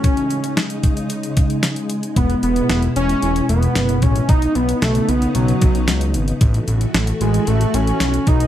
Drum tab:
HH |xxxxxxxxxxxxxxxx|xxxxxxxxxxxxxxxx|xxxxxxxxxxxxxxxx|xxxxxxxxxxxxxxxx|
SD |----o-------o---|----o-------o---|----o-------o---|----o-------o---|
BD |o-----o---o-----|o-------------o-|o---------o-----|o-------------o-|